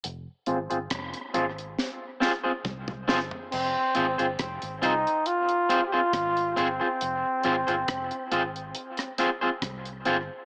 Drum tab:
CC |----------------|x---------------|----------------|
HH |x-xxxxxx--------|--xxxxxxxxx-xxx-|x-xxxxxxxxx-xxx-|
SD |----r---o-o---o-|----r-------r---|----r----r--r---|
T2 |------------oo--|----------------|----------------|
FT |---------------o|----------------|----------------|
BD |----o-------o---|----o-------o---|----o-------o---|